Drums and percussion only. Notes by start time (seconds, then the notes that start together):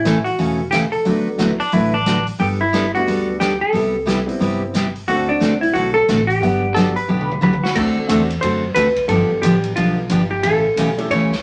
0.05 snare, closed hi-hat
0.26 open hi-hat
0.39 open hi-hat
0.72 snare, closed hi-hat
0.93 open hi-hat
1.05 open hi-hat
1.39 snare, closed hi-hat
1.60 open hi-hat
1.72 open hi-hat
2.06 snare, closed hi-hat
2.27 open hi-hat
2.40 open hi-hat
2.74 snare, closed hi-hat
2.95 open hi-hat
3.08 open hi-hat
3.41 snare, closed hi-hat
3.75 open hi-hat
4.08 snare, closed hi-hat
4.29 open hi-hat
4.42 open hi-hat
4.74 snare, closed hi-hat
4.96 open hi-hat
5.08 open hi-hat
5.42 snare, closed hi-hat
5.63 open hi-hat
5.75 open hi-hat
6.09 snare, closed hi-hat
6.30 open hi-hat
6.43 open hi-hat
6.76 snare, closed hi-hat
6.96 open hi-hat
7.10 high tom
7.21 mid tom
7.31 mid tom
7.43 mid tom
7.53 mid tom
7.65 snare
7.75 kick, crash
8.09 hi-hat pedal, ride
8.30 ride
8.43 ride
8.76 hi-hat pedal, ride
8.96 kick, ride
9.09 ride
9.43 hi-hat pedal, ride
9.64 ride
9.77 ride
10.09 hi-hat pedal, ride
10.43 ride
10.77 hi-hat pedal, ride
10.98 ride
11.11 ride
11.32 snare